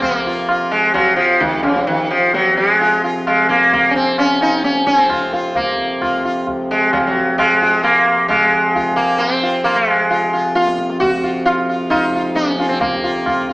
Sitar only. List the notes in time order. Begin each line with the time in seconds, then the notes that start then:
0.02 A#3
0.26 F4
0.50 F4
0.71 G#3
0.94 F#3
1.16 F3
1.40 D#3
1.63 C#3
1.87 D#3
2.10 F3
2.34 F#3
2.57 G#3
2.81 F4
3.04 F4
3.27 G#3
3.49 A#3
3.73 A#3
3.90 C#4
3.96 C4
4.19 C#4
4.42 D#4
4.64 C#4
4.87 C#4
4.99 C4
5.10 F4
5.33 F4
5.56 A#3
6.02 F4
6.25 F4
6.71 G#3
6.93 F#3
7.00 F3
7.07 F#3
7.38 G#3
7.62 F4
7.83 A#3
8.28 G#3
8.75 F4
8.96 A#3
9.18 C4
9.43 F4
9.64 A#3
9.76 G#3
10.10 F4
10.33 F4
10.55 F4
11.00 F#4
11.24 F4
11.45 F4
11.69 F4
11.90 D#4 F4
12.15 F4
12.35 C#4
12.59 F4
12.69 C4
12.81 A#3
13.04 F4
13.26 F4
13.49 F4